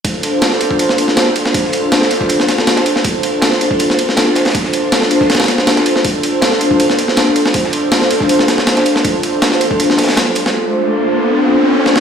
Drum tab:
RD |x---x---x---x---x---x---x---x---|x---x---x---x---x---x---x-x-x---|x---x---x---x---x---x---x---x---|x---x---x---x---xxxxx---x-x-x---|
HH |x---x---x---x---x---x---x---x---|x---x---x---x---x---x---x---x---|x---x---x---x---x---x---x---x-xx|x---x---x---x---x---x---x---x---|
SD |--------o-o-------o---o-o-----o-|--o-----o-o---o---o-o-o-o-o---o-|--------o-o-------o---o-o---o-oo|--o-----o-o---o-ooooo-o-o-o---o-|
BD |o-------------o-----------------|o-------------o-----------------|o-------------o-----------------|o-------------o-----------------|

RD |x---x---x---x---x---x---x---x---|x---x---x---x---x---x---x-x-x---|x---x---x---x---x---x---x---x---|--------------------------------|
HH |x---x---x---x---x---x---x---x---|x---x---x---x---x---x---x---x---|x---x---x---x---x---xxxxx---x---|--------------------------------|
SD |--------o-o-------o---o-o-----o-|--o-----o-o---o---o-o-o-o-o---o-|--------o-o-------o-ooooo-----o-|----------------------------o-o-|
BD |o-------------o-----------------|o-------------o-----------------|o-------------o-----------------|--------------------------------|